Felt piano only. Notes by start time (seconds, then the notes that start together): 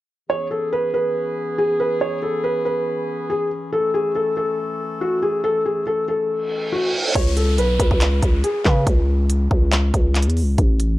0.30 C#5
0.51 A4
0.73 B4
0.94 B4
1.58 G#4
1.80 B4
2.01 C#5
2.22 A4
2.44 B4
2.65 B4
3.30 G#4
3.73 A4
3.94 G#4
4.15 A4
4.37 A4
5.01 F#4
5.22 G#4
5.44 A4
5.66 G#4
5.87 A4
6.08 A4
6.72 F#4
7.15 C#5
7.37 A4
7.58 B4
7.80 B4
8.44 G#4
8.65 B4